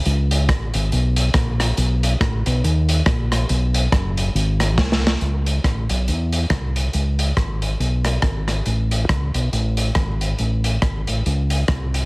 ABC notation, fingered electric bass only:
X:1
M:4/4
L:1/8
Q:"Swing" 1/4=139
K:C#m
V:1 name="Fingered electric bass" clef=bass
C,,2 A,,, G,,, B,,,2 ^A,,,2 | B,,,2 A,,, B,,, D,,2 ^A,,,2 | B,,,2 F,,,2 G,,,2 ^B,,,2 | C,,2 A,,, B,,, E,,2 ^B,,,2 |
C,,2 G,,,2 B,,,2 G,,,2 | A,,,2 C,, B,,, A,,,2 G,,,2 | A,,,2 G,,, A,,, C,,2 ^B,,,2 |]